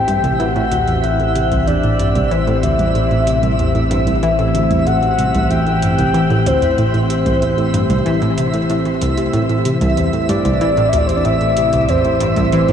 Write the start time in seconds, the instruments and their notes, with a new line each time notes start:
Already playing: synth drone A1, analog synth pad A2 E3 C4 G4 C5, synth texture E5, soft synth lead G5
0.08 synth arpeggio sound G2, closed hi-hat, high tom
0.24 synth arpeggio sound C2, closed hi-hat, high tom
0.40 synth arpeggio sound E3, soft synth lead F#5, closed hi-hat
0.56 synth arpeggio sound A2, closed hi-hat
0.72 synth arpeggio sound D2, closed hi-hat
0.88 synth arpeggio sound E2, closed hi-hat
1.04 synth arpeggio sound A2, soft synth lead E5, closed hi-hat
1.20 synth arpeggio sound A2, closed hi-hat
1.35 synth arpeggio sound C3, closed hi-hat
1.52 synth arpeggio sound C2, closed hi-hat
1.67 synth arpeggio sound E2, soft synth lead D5, closed hi-hat
1.83 synth arpeggio sound A2, closed hi-hat
1.99 synth arpeggio sound G2, closed hi-hat
2.15 synth arpeggio sound C2, closed hi-hat, high tom
2.31 synth arpeggio sound E3, soft synth lead C5, closed hi-hat
2.47 synth arpeggio sound A2, closed hi-hat
2.63 synth arpeggio sound D2, soft synth lead E5, closed hi-hat
2.79 synth arpeggio sound E2, closed hi-hat, high tom
2.95 synth arpeggio sound A2, closed hi-hat
3.11 synth arpeggio sound A2, closed hi-hat
3.27 synth arpeggio sound C3, closed hi-hat
3.43 synth arpeggio sound C2, closed hi-hat
3.59 synth arpeggio sound E2, closed hi-hat
3.75 synth arpeggio sound A2, closed hi-hat
3.91 synth arpeggio sound G2, closed hi-hat
4.07 synth arpeggio sound C2, closed hi-hat
4.23 synth arpeggio sound E3, soft synth lead E5, closed hi-hat
4.39 synth arpeggio sound A2, closed hi-hat
4.55 synth arpeggio sound D2, closed hi-hat
4.71 synth arpeggio sound E2, closed hi-hat, high tom
4.87 synth arpeggio sound A2, soft synth lead F#5, closed hi-hat
5.03 synth arpeggio sound A2, closed hi-hat
5.19 synth arpeggio sound C3, closed hi-hat, high tom
5.35 synth arpeggio sound C2, closed hi-hat, high tom
5.50 synth arpeggio sound E2, soft synth lead G5, closed hi-hat
5.67 synth arpeggio sound A2, closed hi-hat
5.82 synth arpeggio sound G2, closed hi-hat
5.98 synth arpeggio sound C2, closed hi-hat
6.14 synth arpeggio sound E3, closed hi-hat
6.30 synth arpeggio sound A2, closed hi-hat
6.46 synth arpeggio sound D2, soft synth lead C5, closed hi-hat
6.62 synth arpeggio sound E2, closed hi-hat
6.78 synth arpeggio sound A2, closed hi-hat
6.94 synth arpeggio sound A2, closed hi-hat
7.10 synth arpeggio sound C3, closed hi-hat
7.26 synth arpeggio sound C2, closed hi-hat, high tom
7.42 synth arpeggio sound E2, closed hi-hat
7.58 synth arpeggio sound A2, closed hi-hat
7.74 synth arpeggio sound G2, closed hi-hat
7.90 synth arpeggio sound C2, closed hi-hat, high tom
8.06 synth arpeggio sound E3, closed hi-hat
8.22 synth arpeggio sound A2, closed hi-hat
8.38 synth arpeggio sound C3, closed hi-hat
8.54 synth arpeggio sound A2, closed hi-hat
8.70 synth arpeggio sound A2, closed hi-hat
8.85 synth arpeggio sound E3, closed hi-hat
9.02 synth arpeggio sound C2, closed hi-hat
9.17 synth arpeggio sound C3, closed hi-hat
9.33 synth drone A1, synth arpeggio sound A2, closed hi-hat
9.49 synth arpeggio sound A2, closed hi-hat
9.65 synth arpeggio sound C3, closed hi-hat
9.81 synth arpeggio sound C2, closed hi-hat, high tom
9.97 synth arpeggio sound E2, closed hi-hat
10.13 synth arpeggio sound A2, closed hi-hat
10.29 synth arpeggio sound G2, soft synth lead D5, closed hi-hat, high tom
10.45 synth arpeggio sound C2, closed hi-hat, high tom
10.61 synth arpeggio sound E3, closed hi-hat
10.77 synth arpeggio sound A2, closed hi-hat
10.89 soft synth lead E5
10.93 synth arpeggio sound D2, closed hi-hat
10.98 soft synth lead D5
11.07 synth arpeggio sound E2, soft synth lead C5, closed hi-hat
11.16 soft synth lead D5
11.25 synth arpeggio sound A2, soft synth lead E5, closed hi-hat
11.41 synth arpeggio sound A2, closed hi-hat
11.57 synth arpeggio sound C3, closed hi-hat
11.73 synth arpeggio sound C2, closed hi-hat
11.89 synth arpeggio sound E2, soft synth lead C5, closed hi-hat
12.05 synth arpeggio sound A2, closed hi-hat
12.20 synth arpeggio sound G2, closed hi-hat
12.36 synth arpeggio sound C2, closed hi-hat, high tom
12.52 synth arpeggio sound E3, soft synth lead C5, closed hi-hat
12.68 synth arpeggio sound A2, closed hi-hat